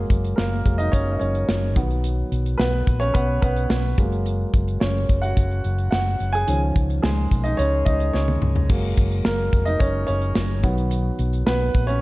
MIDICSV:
0, 0, Header, 1, 4, 480
1, 0, Start_track
1, 0, Key_signature, 6, "major"
1, 0, Tempo, 555042
1, 1763, Time_signature, 4, 2, 24, 8
1, 10391, End_track
2, 0, Start_track
2, 0, Title_t, "Upright piano"
2, 0, Program_c, 0, 0
2, 0, Control_c, 0, 64, 127
2, 0, Note_on_c, 0, 54, 45
2, 0, Note_on_c, 0, 56, 43
2, 0, Note_on_c, 0, 58, 55
2, 161, Note_off_c, 0, 54, 0
2, 163, Note_off_c, 0, 56, 0
2, 167, Note_off_c, 0, 58, 0
2, 310, Note_on_c, 0, 70, 67
2, 330, Note_on_c, 0, 58, 58
2, 558, Note_off_c, 0, 58, 0
2, 564, Note_on_c, 0, 54, 39
2, 566, Note_on_c, 0, 56, 35
2, 571, Note_on_c, 0, 58, 47
2, 675, Note_on_c, 0, 75, 82
2, 688, Note_off_c, 0, 70, 0
2, 692, Note_on_c, 0, 63, 62
2, 718, Note_off_c, 0, 75, 0
2, 736, Note_off_c, 0, 63, 0
2, 779, Note_off_c, 0, 54, 0
2, 781, Note_off_c, 0, 56, 0
2, 783, Note_off_c, 0, 58, 0
2, 794, Note_on_c, 0, 73, 83
2, 812, Note_on_c, 0, 61, 66
2, 965, Note_off_c, 0, 73, 0
2, 972, Note_on_c, 0, 75, 56
2, 975, Note_off_c, 0, 61, 0
2, 1034, Note_on_c, 0, 73, 77
2, 1038, Note_off_c, 0, 75, 0
2, 1052, Note_on_c, 0, 61, 57
2, 1484, Note_off_c, 0, 73, 0
2, 1494, Note_off_c, 0, 61, 0
2, 1521, Note_on_c, 0, 51, 49
2, 1525, Note_on_c, 0, 54, 45
2, 1531, Note_on_c, 0, 59, 54
2, 1532, Control_c, 0, 64, 0
2, 1675, Control_c, 0, 64, 127
2, 2207, Note_off_c, 0, 51, 0
2, 2209, Note_off_c, 0, 54, 0
2, 2212, Note_off_c, 0, 59, 0
2, 2227, Note_on_c, 0, 71, 79
2, 2249, Note_on_c, 0, 59, 61
2, 2569, Note_off_c, 0, 71, 0
2, 2581, Note_off_c, 0, 59, 0
2, 2592, Note_on_c, 0, 73, 91
2, 2610, Note_on_c, 0, 61, 64
2, 2635, Note_off_c, 0, 73, 0
2, 2653, Note_off_c, 0, 61, 0
2, 2714, Note_on_c, 0, 71, 81
2, 2732, Note_on_c, 0, 59, 63
2, 2945, Note_off_c, 0, 71, 0
2, 2951, Note_off_c, 0, 59, 0
2, 2958, Note_on_c, 0, 71, 83
2, 2973, Note_on_c, 0, 59, 62
2, 3406, Note_off_c, 0, 71, 0
2, 3414, Note_off_c, 0, 59, 0
2, 3440, Note_on_c, 0, 54, 45
2, 3445, Note_on_c, 0, 56, 47
2, 3450, Note_on_c, 0, 58, 49
2, 3453, Control_c, 0, 64, 0
2, 3621, Control_c, 0, 64, 127
2, 3760, Note_off_c, 0, 54, 0
2, 3763, Note_off_c, 0, 56, 0
2, 3765, Note_off_c, 0, 58, 0
2, 4154, Note_on_c, 0, 73, 67
2, 4174, Note_on_c, 0, 61, 54
2, 4503, Note_off_c, 0, 61, 0
2, 4511, Note_on_c, 0, 78, 78
2, 4529, Note_off_c, 0, 73, 0
2, 4531, Note_on_c, 0, 66, 65
2, 4739, Note_off_c, 0, 78, 0
2, 4750, Note_off_c, 0, 66, 0
2, 5109, Note_on_c, 0, 78, 78
2, 5129, Note_on_c, 0, 66, 56
2, 5449, Note_off_c, 0, 78, 0
2, 5460, Note_off_c, 0, 66, 0
2, 5471, Note_on_c, 0, 80, 93
2, 5491, Note_on_c, 0, 68, 63
2, 5597, Note_on_c, 0, 51, 53
2, 5603, Note_on_c, 0, 53, 45
2, 5609, Note_on_c, 0, 61, 55
2, 5613, Control_c, 0, 64, 0
2, 5699, Note_off_c, 0, 80, 0
2, 5710, Note_off_c, 0, 68, 0
2, 5778, Control_c, 0, 64, 127
2, 5918, Note_off_c, 0, 51, 0
2, 5921, Note_off_c, 0, 53, 0
2, 5924, Note_off_c, 0, 61, 0
2, 6074, Note_on_c, 0, 68, 71
2, 6092, Note_on_c, 0, 56, 57
2, 6412, Note_off_c, 0, 68, 0
2, 6422, Note_off_c, 0, 56, 0
2, 6431, Note_on_c, 0, 75, 76
2, 6450, Note_on_c, 0, 63, 67
2, 6474, Note_off_c, 0, 75, 0
2, 6493, Note_off_c, 0, 63, 0
2, 6548, Note_on_c, 0, 73, 90
2, 6569, Note_on_c, 0, 61, 60
2, 6788, Note_off_c, 0, 61, 0
2, 6791, Note_on_c, 0, 75, 74
2, 6802, Note_off_c, 0, 73, 0
2, 6811, Note_on_c, 0, 63, 61
2, 7029, Note_off_c, 0, 63, 0
2, 7035, Note_on_c, 0, 73, 82
2, 7043, Note_off_c, 0, 75, 0
2, 7054, Note_on_c, 0, 61, 57
2, 7372, Note_off_c, 0, 73, 0
2, 7383, Note_off_c, 0, 61, 0
2, 7519, Note_on_c, 0, 54, 51
2, 7524, Note_on_c, 0, 56, 42
2, 7531, Note_on_c, 0, 58, 53
2, 7533, Control_c, 0, 64, 0
2, 7697, Control_c, 0, 64, 127
2, 7839, Note_off_c, 0, 54, 0
2, 7841, Note_off_c, 0, 56, 0
2, 7845, Note_off_c, 0, 58, 0
2, 7997, Note_on_c, 0, 70, 71
2, 8012, Note_on_c, 0, 58, 54
2, 8341, Note_off_c, 0, 58, 0
2, 8349, Note_on_c, 0, 75, 83
2, 8367, Note_on_c, 0, 63, 64
2, 8369, Note_off_c, 0, 70, 0
2, 8466, Note_off_c, 0, 75, 0
2, 8471, Note_on_c, 0, 73, 83
2, 8475, Note_off_c, 0, 63, 0
2, 8487, Note_on_c, 0, 61, 64
2, 8526, Note_off_c, 0, 73, 0
2, 8540, Note_off_c, 0, 61, 0
2, 8707, Note_on_c, 0, 73, 90
2, 8726, Note_on_c, 0, 61, 61
2, 9159, Note_off_c, 0, 73, 0
2, 9169, Note_off_c, 0, 61, 0
2, 9192, Note_on_c, 0, 51, 49
2, 9196, Note_on_c, 0, 54, 45
2, 9202, Note_on_c, 0, 59, 59
2, 9211, Control_c, 0, 64, 0
2, 9385, Control_c, 0, 64, 127
2, 9914, Note_off_c, 0, 59, 0
2, 9915, Note_on_c, 0, 71, 84
2, 9927, Note_on_c, 0, 59, 61
2, 10258, Note_off_c, 0, 59, 0
2, 10266, Note_on_c, 0, 73, 90
2, 10285, Note_on_c, 0, 61, 71
2, 10288, Note_off_c, 0, 71, 0
2, 10376, Note_off_c, 0, 51, 0
2, 10382, Note_off_c, 0, 54, 0
2, 10391, Note_off_c, 0, 61, 0
2, 10391, Note_off_c, 0, 73, 0
2, 10391, End_track
3, 0, Start_track
3, 0, Title_t, "Fingered electric bass"
3, 0, Program_c, 1, 33
3, 89, Note_on_c, 1, 30, 86
3, 283, Note_off_c, 1, 30, 0
3, 330, Note_on_c, 1, 30, 80
3, 524, Note_off_c, 1, 30, 0
3, 568, Note_on_c, 1, 29, 72
3, 763, Note_off_c, 1, 29, 0
3, 805, Note_on_c, 1, 30, 81
3, 1001, Note_off_c, 1, 30, 0
3, 1045, Note_on_c, 1, 30, 91
3, 1241, Note_off_c, 1, 30, 0
3, 1285, Note_on_c, 1, 30, 75
3, 1523, Note_off_c, 1, 30, 0
3, 1523, Note_on_c, 1, 35, 71
3, 1917, Note_off_c, 1, 35, 0
3, 2004, Note_on_c, 1, 35, 88
3, 2200, Note_off_c, 1, 35, 0
3, 2241, Note_on_c, 1, 35, 79
3, 2439, Note_off_c, 1, 35, 0
3, 2484, Note_on_c, 1, 34, 76
3, 2680, Note_off_c, 1, 34, 0
3, 2721, Note_on_c, 1, 35, 89
3, 2919, Note_off_c, 1, 35, 0
3, 2961, Note_on_c, 1, 35, 86
3, 3158, Note_off_c, 1, 35, 0
3, 3200, Note_on_c, 1, 35, 83
3, 3398, Note_off_c, 1, 35, 0
3, 3442, Note_on_c, 1, 30, 81
3, 3836, Note_off_c, 1, 30, 0
3, 3923, Note_on_c, 1, 30, 83
3, 4119, Note_off_c, 1, 30, 0
3, 4164, Note_on_c, 1, 30, 92
3, 4360, Note_off_c, 1, 30, 0
3, 4406, Note_on_c, 1, 30, 70
3, 4601, Note_off_c, 1, 30, 0
3, 4644, Note_on_c, 1, 30, 82
3, 4840, Note_off_c, 1, 30, 0
3, 4883, Note_on_c, 1, 30, 91
3, 5079, Note_off_c, 1, 30, 0
3, 5121, Note_on_c, 1, 30, 76
3, 5318, Note_off_c, 1, 30, 0
3, 5364, Note_on_c, 1, 30, 81
3, 5560, Note_off_c, 1, 30, 0
3, 5606, Note_on_c, 1, 37, 86
3, 5801, Note_off_c, 1, 37, 0
3, 5845, Note_on_c, 1, 37, 83
3, 6040, Note_off_c, 1, 37, 0
3, 6084, Note_on_c, 1, 37, 85
3, 6279, Note_off_c, 1, 37, 0
3, 6325, Note_on_c, 1, 35, 74
3, 6520, Note_off_c, 1, 35, 0
3, 6561, Note_on_c, 1, 37, 85
3, 6757, Note_off_c, 1, 37, 0
3, 6801, Note_on_c, 1, 37, 87
3, 6997, Note_off_c, 1, 37, 0
3, 7041, Note_on_c, 1, 37, 77
3, 7237, Note_off_c, 1, 37, 0
3, 7282, Note_on_c, 1, 37, 81
3, 7478, Note_off_c, 1, 37, 0
3, 7521, Note_on_c, 1, 30, 92
3, 7718, Note_off_c, 1, 30, 0
3, 7761, Note_on_c, 1, 30, 91
3, 7957, Note_off_c, 1, 30, 0
3, 8001, Note_on_c, 1, 30, 90
3, 8197, Note_off_c, 1, 30, 0
3, 8240, Note_on_c, 1, 29, 72
3, 8437, Note_off_c, 1, 29, 0
3, 8479, Note_on_c, 1, 30, 85
3, 8676, Note_off_c, 1, 30, 0
3, 8719, Note_on_c, 1, 30, 85
3, 8916, Note_off_c, 1, 30, 0
3, 8959, Note_on_c, 1, 30, 82
3, 9199, Note_off_c, 1, 30, 0
3, 9199, Note_on_c, 1, 35, 84
3, 9593, Note_off_c, 1, 35, 0
3, 9678, Note_on_c, 1, 35, 98
3, 9875, Note_off_c, 1, 35, 0
3, 9916, Note_on_c, 1, 35, 82
3, 10114, Note_off_c, 1, 35, 0
3, 10159, Note_on_c, 1, 34, 76
3, 10356, Note_off_c, 1, 34, 0
3, 10391, End_track
4, 0, Start_track
4, 0, Title_t, "Drums"
4, 87, Note_on_c, 9, 36, 78
4, 89, Note_on_c, 9, 42, 66
4, 174, Note_off_c, 9, 36, 0
4, 175, Note_off_c, 9, 42, 0
4, 211, Note_on_c, 9, 42, 49
4, 297, Note_off_c, 9, 42, 0
4, 328, Note_on_c, 9, 38, 99
4, 415, Note_off_c, 9, 38, 0
4, 568, Note_on_c, 9, 36, 67
4, 568, Note_on_c, 9, 42, 53
4, 654, Note_off_c, 9, 36, 0
4, 654, Note_off_c, 9, 42, 0
4, 686, Note_on_c, 9, 42, 48
4, 773, Note_off_c, 9, 42, 0
4, 806, Note_on_c, 9, 36, 80
4, 808, Note_on_c, 9, 42, 84
4, 892, Note_off_c, 9, 36, 0
4, 895, Note_off_c, 9, 42, 0
4, 1044, Note_on_c, 9, 42, 59
4, 1130, Note_off_c, 9, 42, 0
4, 1166, Note_on_c, 9, 42, 42
4, 1253, Note_off_c, 9, 42, 0
4, 1286, Note_on_c, 9, 38, 103
4, 1372, Note_off_c, 9, 38, 0
4, 1521, Note_on_c, 9, 42, 61
4, 1523, Note_on_c, 9, 36, 84
4, 1608, Note_off_c, 9, 42, 0
4, 1610, Note_off_c, 9, 36, 0
4, 1645, Note_on_c, 9, 42, 37
4, 1732, Note_off_c, 9, 42, 0
4, 1764, Note_on_c, 9, 42, 85
4, 1850, Note_off_c, 9, 42, 0
4, 2006, Note_on_c, 9, 42, 69
4, 2092, Note_off_c, 9, 42, 0
4, 2127, Note_on_c, 9, 42, 51
4, 2213, Note_off_c, 9, 42, 0
4, 2244, Note_on_c, 9, 38, 98
4, 2330, Note_off_c, 9, 38, 0
4, 2484, Note_on_c, 9, 36, 70
4, 2484, Note_on_c, 9, 42, 51
4, 2570, Note_off_c, 9, 36, 0
4, 2570, Note_off_c, 9, 42, 0
4, 2601, Note_on_c, 9, 42, 47
4, 2687, Note_off_c, 9, 42, 0
4, 2722, Note_on_c, 9, 36, 80
4, 2724, Note_on_c, 9, 42, 80
4, 2809, Note_off_c, 9, 36, 0
4, 2810, Note_off_c, 9, 42, 0
4, 2960, Note_on_c, 9, 42, 59
4, 2962, Note_on_c, 9, 36, 77
4, 3046, Note_off_c, 9, 42, 0
4, 3048, Note_off_c, 9, 36, 0
4, 3082, Note_on_c, 9, 42, 49
4, 3169, Note_off_c, 9, 42, 0
4, 3200, Note_on_c, 9, 38, 104
4, 3287, Note_off_c, 9, 38, 0
4, 3438, Note_on_c, 9, 42, 61
4, 3442, Note_on_c, 9, 36, 87
4, 3525, Note_off_c, 9, 42, 0
4, 3528, Note_off_c, 9, 36, 0
4, 3566, Note_on_c, 9, 42, 40
4, 3653, Note_off_c, 9, 42, 0
4, 3683, Note_on_c, 9, 42, 79
4, 3769, Note_off_c, 9, 42, 0
4, 3923, Note_on_c, 9, 36, 76
4, 3923, Note_on_c, 9, 42, 68
4, 4009, Note_off_c, 9, 42, 0
4, 4010, Note_off_c, 9, 36, 0
4, 4045, Note_on_c, 9, 42, 47
4, 4132, Note_off_c, 9, 42, 0
4, 4162, Note_on_c, 9, 38, 103
4, 4248, Note_off_c, 9, 38, 0
4, 4403, Note_on_c, 9, 42, 57
4, 4405, Note_on_c, 9, 36, 69
4, 4490, Note_off_c, 9, 42, 0
4, 4491, Note_off_c, 9, 36, 0
4, 4522, Note_on_c, 9, 42, 52
4, 4609, Note_off_c, 9, 42, 0
4, 4644, Note_on_c, 9, 36, 80
4, 4645, Note_on_c, 9, 42, 82
4, 4730, Note_off_c, 9, 36, 0
4, 4731, Note_off_c, 9, 42, 0
4, 4767, Note_on_c, 9, 42, 28
4, 4853, Note_off_c, 9, 42, 0
4, 4880, Note_on_c, 9, 42, 60
4, 4966, Note_off_c, 9, 42, 0
4, 5002, Note_on_c, 9, 42, 42
4, 5088, Note_off_c, 9, 42, 0
4, 5123, Note_on_c, 9, 38, 101
4, 5210, Note_off_c, 9, 38, 0
4, 5363, Note_on_c, 9, 42, 57
4, 5449, Note_off_c, 9, 42, 0
4, 5488, Note_on_c, 9, 42, 41
4, 5574, Note_off_c, 9, 42, 0
4, 5602, Note_on_c, 9, 42, 87
4, 5689, Note_off_c, 9, 42, 0
4, 5843, Note_on_c, 9, 42, 69
4, 5844, Note_on_c, 9, 36, 84
4, 5930, Note_off_c, 9, 42, 0
4, 5931, Note_off_c, 9, 36, 0
4, 5968, Note_on_c, 9, 42, 50
4, 6054, Note_off_c, 9, 42, 0
4, 6084, Note_on_c, 9, 38, 115
4, 6171, Note_off_c, 9, 38, 0
4, 6324, Note_on_c, 9, 42, 58
4, 6325, Note_on_c, 9, 36, 68
4, 6410, Note_off_c, 9, 42, 0
4, 6412, Note_off_c, 9, 36, 0
4, 6442, Note_on_c, 9, 42, 46
4, 6528, Note_off_c, 9, 42, 0
4, 6562, Note_on_c, 9, 42, 90
4, 6649, Note_off_c, 9, 42, 0
4, 6796, Note_on_c, 9, 42, 66
4, 6801, Note_on_c, 9, 36, 74
4, 6883, Note_off_c, 9, 42, 0
4, 6888, Note_off_c, 9, 36, 0
4, 6918, Note_on_c, 9, 42, 49
4, 7004, Note_off_c, 9, 42, 0
4, 7041, Note_on_c, 9, 38, 53
4, 7127, Note_off_c, 9, 38, 0
4, 7160, Note_on_c, 9, 48, 56
4, 7247, Note_off_c, 9, 48, 0
4, 7280, Note_on_c, 9, 45, 74
4, 7367, Note_off_c, 9, 45, 0
4, 7399, Note_on_c, 9, 43, 75
4, 7486, Note_off_c, 9, 43, 0
4, 7519, Note_on_c, 9, 49, 74
4, 7521, Note_on_c, 9, 54, 43
4, 7522, Note_on_c, 9, 36, 98
4, 7606, Note_off_c, 9, 49, 0
4, 7608, Note_off_c, 9, 36, 0
4, 7608, Note_off_c, 9, 54, 0
4, 7761, Note_on_c, 9, 36, 76
4, 7761, Note_on_c, 9, 42, 75
4, 7848, Note_off_c, 9, 36, 0
4, 7848, Note_off_c, 9, 42, 0
4, 7883, Note_on_c, 9, 42, 49
4, 7970, Note_off_c, 9, 42, 0
4, 7998, Note_on_c, 9, 38, 111
4, 8001, Note_on_c, 9, 54, 87
4, 8085, Note_off_c, 9, 38, 0
4, 8087, Note_off_c, 9, 54, 0
4, 8115, Note_on_c, 9, 42, 33
4, 8202, Note_off_c, 9, 42, 0
4, 8236, Note_on_c, 9, 42, 54
4, 8240, Note_on_c, 9, 36, 79
4, 8243, Note_on_c, 9, 54, 50
4, 8323, Note_off_c, 9, 42, 0
4, 8327, Note_off_c, 9, 36, 0
4, 8329, Note_off_c, 9, 54, 0
4, 8356, Note_on_c, 9, 42, 55
4, 8443, Note_off_c, 9, 42, 0
4, 8476, Note_on_c, 9, 42, 78
4, 8478, Note_on_c, 9, 36, 83
4, 8483, Note_on_c, 9, 54, 27
4, 8563, Note_off_c, 9, 42, 0
4, 8564, Note_off_c, 9, 36, 0
4, 8569, Note_off_c, 9, 54, 0
4, 8711, Note_on_c, 9, 42, 66
4, 8722, Note_on_c, 9, 54, 40
4, 8798, Note_off_c, 9, 42, 0
4, 8808, Note_off_c, 9, 54, 0
4, 8835, Note_on_c, 9, 42, 44
4, 8921, Note_off_c, 9, 42, 0
4, 8954, Note_on_c, 9, 38, 102
4, 8954, Note_on_c, 9, 54, 80
4, 9040, Note_off_c, 9, 54, 0
4, 9041, Note_off_c, 9, 38, 0
4, 9193, Note_on_c, 9, 42, 61
4, 9198, Note_on_c, 9, 36, 83
4, 9199, Note_on_c, 9, 54, 42
4, 9280, Note_off_c, 9, 42, 0
4, 9284, Note_off_c, 9, 36, 0
4, 9286, Note_off_c, 9, 54, 0
4, 9319, Note_on_c, 9, 42, 42
4, 9406, Note_off_c, 9, 42, 0
4, 9434, Note_on_c, 9, 42, 88
4, 9439, Note_on_c, 9, 54, 49
4, 9520, Note_off_c, 9, 42, 0
4, 9525, Note_off_c, 9, 54, 0
4, 9675, Note_on_c, 9, 42, 75
4, 9679, Note_on_c, 9, 54, 31
4, 9762, Note_off_c, 9, 42, 0
4, 9765, Note_off_c, 9, 54, 0
4, 9799, Note_on_c, 9, 42, 50
4, 9885, Note_off_c, 9, 42, 0
4, 9917, Note_on_c, 9, 38, 107
4, 9919, Note_on_c, 9, 54, 81
4, 10003, Note_off_c, 9, 38, 0
4, 10005, Note_off_c, 9, 54, 0
4, 10156, Note_on_c, 9, 42, 57
4, 10157, Note_on_c, 9, 54, 49
4, 10159, Note_on_c, 9, 36, 73
4, 10242, Note_off_c, 9, 42, 0
4, 10243, Note_off_c, 9, 54, 0
4, 10245, Note_off_c, 9, 36, 0
4, 10275, Note_on_c, 9, 42, 53
4, 10362, Note_off_c, 9, 42, 0
4, 10391, End_track
0, 0, End_of_file